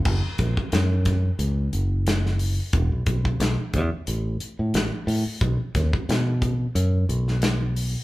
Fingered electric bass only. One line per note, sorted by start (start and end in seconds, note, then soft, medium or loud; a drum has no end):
0.05 0.21 F#1 medium
0.39 0.54 A#1 medium
0.73 1.30 F#2 medium
1.39 1.68 C#2 medium
1.73 2.59 F#1 medium
2.73 2.89 E1 medium
2.92 3.05 B1 medium
3.07 3.35 B1 medium
3.40 3.56 B1 medium
3.74 3.89 E2 medium
4.08 4.36 A1 medium
4.59 4.72 A2 medium
4.74 4.90 A1 medium
5.07 5.23 A2 medium
5.26 muted fingered electric bass stroke soft
5.41 5.57 B1 medium
5.75 5.90 D#2 medium
6.09 6.66 B2 medium
6.75 7.04 F#2 medium
7.09 7.95 B1 medium